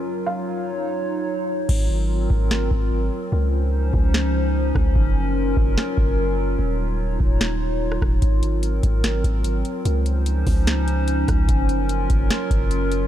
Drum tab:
CC |----------------|x---------------|----------------|----------------|
HH |----------------|----------------|----------------|----------------|
SD |----------------|--------o-------|--------o-----r-|--------o-------|
BD |----------------|o-----o---o-----|------o-------o-|o-----o---o-----|

CC |----------------|----------------|----------------|----------------|
HH |----------------|x-x-x-x-x-x-x-x-|x-x-x-o-x-x-x-x-|x-x-x-x-x-x-x-x-|
SD |--------o----rr-|--------o-------|--------o-----r-|--------o-------|
BD |------o-------o-|o-----o---o-----|------o-------o-|o-----o---o-----|